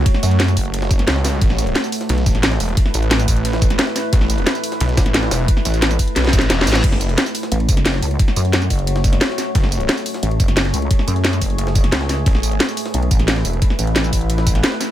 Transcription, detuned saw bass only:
X:1
M:4/4
L:1/8
Q:1/4=177
K:A
V:1 name="Detuned saw bass" clef=bass
z F,,2 F,,,3 C,,2 | A,,,2 z2 B,,, A,,,2 E,,, | z A,,,2 A,,,3 z2 | A,,,2 z2 B,,, A,,,2 E,,, |
z A,,,2 z B,,, A,,, E,,, A,,, | F,,,2 z6 | z8 | F,,,2 z6 |
z8 | A,,,2 z6 | z8 |]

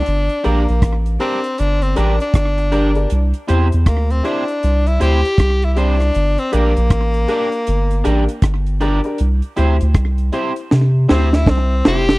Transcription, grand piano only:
X:1
M:4/4
L:1/16
Q:"Swing 16ths" 1/4=79
K:Gdor
V:1 name="Grand piano"
z2 [DGB] z3 [DGB] z3 [DGB] z3 [DGB] [DGB] | z2 [EGc] z3 [EGc] z3 [EGc] z3 [EGc] z | z2 [DGB] z3 [DGB] z3 [DGB] z3 [DGB] [DGB] | z2 [EGc] z3 [EGc] z3 [EGc] z3 [EGc] z |]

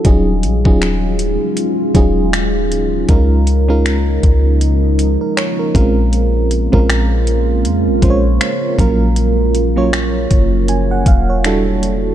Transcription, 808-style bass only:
X:1
M:4/4
L:1/16
Q:"Swing 16ths" 1/4=79
K:Ebdor
V:1 name="808-style bass" clef=bass
E,,,2 B,,, E,,,4 z3 E,,,6 | D,,6 D,,4- D,, z3 B,,,2- | B,,,3 B,,,4- B,,, F,, B,,, B,,,2 z2 B,,,2- | B,,,6 G,,,4 =E,,,6 |]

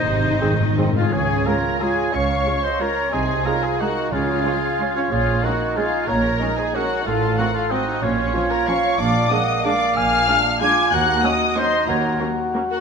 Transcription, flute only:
X:1
M:3/4
L:1/8
Q:1/4=182
K:Db
V:1 name="Flute"
e4- e A | d2 d2 d2 | f3 e d2 | c2 d c B2 |
A4- A F | A2 B2 A2 | d3 c B2 | =A2 B A G2 |
F3 d f2 | f2 g2 f2 | a3 z =d'2 | b2 g2 e2 |
d2 z3 B |]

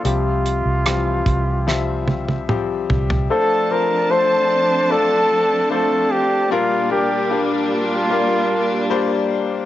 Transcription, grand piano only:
X:1
M:4/4
L:1/8
Q:1/4=75
K:F
V:1 name="Grand piano"
[F,G,CG]2 [E,F,G,CG]2 [F,G,Ce]2 [F,G,CG]2 | [A,CDFc] [F,CDFc] [A,CDFc]2 [A,CDFd]2 [A,CDFc]2 | [G,B,DFB] [G,B,DFB] [G,B,DFG]2 [G,B,DFB]2 [G,B,DFc]2 |]
V:2 name="Grand piano" clef=bass
C,3 z4 z | z8 | B,,3 z4 z |]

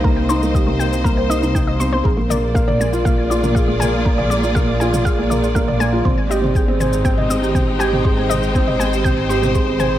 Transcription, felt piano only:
X:1
M:4/4
L:1/16
Q:1/4=120
K:Bbmix
V:1 name="Felt piano"
B, z E B, G B, B z B, c E E E z C C | A B, B z B, d B, F B, z F B, A B, B z | B, d B, F B, z F B, A B, B z B, d B, F | C z G C A C c z C e C G C z G C |
A C c z C e C G C z G C A C c z |]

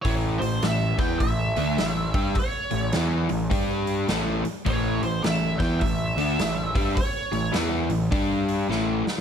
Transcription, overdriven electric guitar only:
X:1
M:4/4
L:1/8
Q:"Swing" 1/4=104
K:A
V:1 name="Overdriven electric guitar" clef=bass
[A,,E,A,] [A,,E,] [A,,E,] [E,B,E] [A,,E,] [D,A,D] [A,,E,] [=G,D=G] | z [A,,E,] [E,B,E] [A,,E,] [=G,D=G]2 [A,,E,A,] z | [A,,E,A,] [A,,E,] [A,,E,] [E,B,E] [A,,E,] [D,A,D] [A,,E,] [=G,D=G] | z [A,,E,] [E,B,E] [A,,E,] [=G,D=G]2 [A,,E,A,] z |]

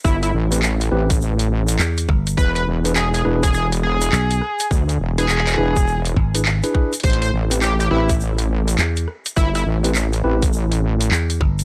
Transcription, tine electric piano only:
X:1
M:4/4
L:1/16
Q:"Swing 16ths" 1/4=103
K:Am
V:1 name="Tine electric piano"
z3 [CEGB] z2 [CEGB] z8 z | z3 [DE^GB] z2 [DEGB] z8 z | z3 [DE^GB] z2 [DEGB] z4 [DEGB] z [DEGB] [DEGB] z | z3 [CEGB] z2 [CEGB] z8 z |
z3 [CEGB] z2 [CEGB] z8 z |]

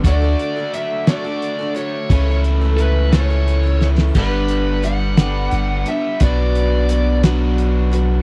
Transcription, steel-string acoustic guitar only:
X:1
M:6/8
L:1/16
Q:3/8=58
K:Glyd
V:1 name="Steel-string acoustic guitar"
[D,F,A,DA] [A,DA]2 [A,DA] [F,A,DA]2 [D,F,A,DA] [A,DA]2 [A,DA] [F,A,DA]2 | [C,E,A,CA] [A,CA]2 [A,CA] [E,A,CA]2 [C,E,A,CA] [A,CA]2 [A,CA] [E,A,CA]2 | [G,,D,G,B,DG]4 [G,B,DG]2 [G,,D,G,B,DG]4 [G,B,DG]2 | [B,,F,B,DF]4 [F,B,DF]2 [B,,F,B,DF]4 [B,DF]2 |]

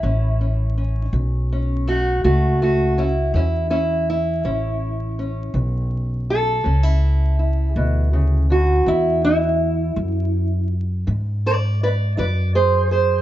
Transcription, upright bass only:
X:1
M:12/8
L:1/8
Q:3/8=54
K:A
V:1 name="Upright bass" clef=bass
A,,,3 B,,,3 C,,3 E,,3 | A,,,3 B,,,3 C,,3 D,,3 | E,,3 F,,3 G,,3 F,,3 |]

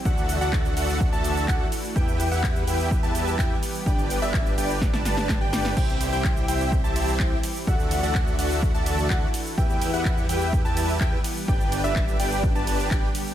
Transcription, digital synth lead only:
X:1
M:4/4
L:1/16
Q:1/4=126
K:G
V:1 name="Digital synth lead"
f3 f3 f3 a3 f2 z2 | g3 f3 g3 a3 g2 z2 | g3 e3 g3 a a3 g3 | g3 g3 g3 a3 g2 z2 |
f3 f3 f3 a3 f2 z2 | g3 f3 g3 a3 g2 z2 | g3 e3 g3 a3 g2 z2 |]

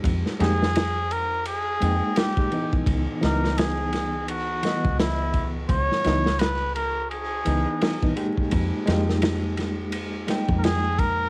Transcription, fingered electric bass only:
X:1
M:4/4
L:1/16
Q:"Swing 16ths" 1/4=85
K:C#dor
V:1 name="Fingered electric bass" clef=bass
=F,, z F,,8 F,, z4 z | C,, z C,,8 z C,,4- C,, | C,, z C,,8 C,, z4 z | =F,, z F,,8 z F,,4- F,, |]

